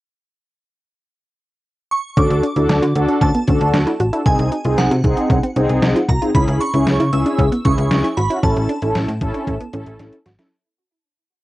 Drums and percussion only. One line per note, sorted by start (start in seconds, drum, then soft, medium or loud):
2.17 kick loud
2.17 closed hi-hat medium
2.31 closed hi-hat medium
2.44 closed hi-hat medium
2.56 closed hi-hat soft
2.69 snare loud
2.69 closed hi-hat medium
2.83 closed hi-hat medium
2.96 closed hi-hat medium
3.08 closed hi-hat soft
3.21 kick medium
3.21 closed hi-hat medium
3.35 closed hi-hat medium
3.47 kick medium
3.47 closed hi-hat medium
3.61 closed hi-hat soft
3.73 snare loud
3.73 closed hi-hat medium
3.87 closed hi-hat medium
4.00 closed hi-hat medium
4.13 closed hi-hat medium
4.26 kick loud
4.26 closed hi-hat medium
4.39 closed hi-hat soft
4.52 closed hi-hat medium
4.65 closed hi-hat soft
4.78 snare loud
4.78 closed hi-hat medium
4.91 closed hi-hat medium
5.04 kick medium
5.04 closed hi-hat medium
5.17 closed hi-hat soft
5.30 kick medium
5.30 closed hi-hat medium
5.43 closed hi-hat medium
5.56 closed hi-hat medium
5.69 closed hi-hat soft
5.82 snare loud
5.82 closed hi-hat medium
5.96 closed hi-hat medium
6.08 kick medium
6.08 closed hi-hat medium
6.22 closed hi-hat medium
6.35 kick loud
6.35 closed hi-hat medium
6.48 closed hi-hat medium
6.61 closed hi-hat medium
6.74 closed hi-hat medium
6.87 snare loud
6.87 closed hi-hat medium
7.00 closed hi-hat medium
7.13 closed hi-hat medium
7.26 closed hi-hat medium
7.39 kick medium
7.39 closed hi-hat medium
7.52 closed hi-hat medium
7.65 kick medium
7.65 closed hi-hat medium
7.78 closed hi-hat soft
7.91 snare loud
7.91 closed hi-hat medium
8.04 closed hi-hat medium
8.17 closed hi-hat medium
8.30 closed hi-hat medium
8.43 kick loud
8.43 closed hi-hat medium
8.56 closed hi-hat medium
8.69 closed hi-hat medium
8.82 closed hi-hat medium
8.95 snare loud
8.95 closed hi-hat medium
9.09 closed hi-hat medium
9.21 kick loud
9.21 closed hi-hat medium
9.34 closed hi-hat soft
9.47 kick medium
9.47 closed hi-hat medium
9.61 closed hi-hat medium
9.73 closed hi-hat medium
9.86 closed hi-hat soft
9.99 snare medium
9.99 closed hi-hat medium
10.13 closed hi-hat medium
10.26 snare medium
10.26 closed hi-hat medium
10.39 snare medium
10.39 closed hi-hat medium